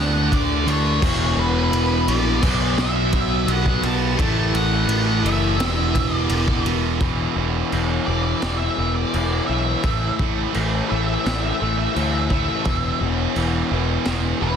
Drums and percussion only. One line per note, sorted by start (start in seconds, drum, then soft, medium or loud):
0.32 kick medium
0.32 ride medium
0.68 ride loud
1.02 kick loud
1.02 crash loud
1.73 ride medium
2.08 ride loud
2.43 kick loud
2.43 crash loud
2.78 snare loud
3.13 kick medium
3.13 ride medium
3.48 ride loud
3.66 kick medium
3.83 ride medium
4.19 kick loud
4.19 ride loud
4.55 ride medium
4.89 ride loud
5.26 ride medium
5.60 snare loud
5.60 ride loud
5.95 kick medium
5.95 ride medium
6.29 ride loud
6.48 kick medium
6.66 ride medium
7.01 kick loud
7.01 crash medium
7.72 crash medium
8.42 snare loud
8.42 crash medium
9.14 crash medium
9.83 kick loud
9.83 crash medium
10.19 kick medium
10.54 crash medium
11.26 snare loud
11.26 crash medium
11.96 crash medium
12.30 kick medium
12.65 kick loud
12.65 crash medium
13.36 crash medium
14.05 snare loud
14.05 crash medium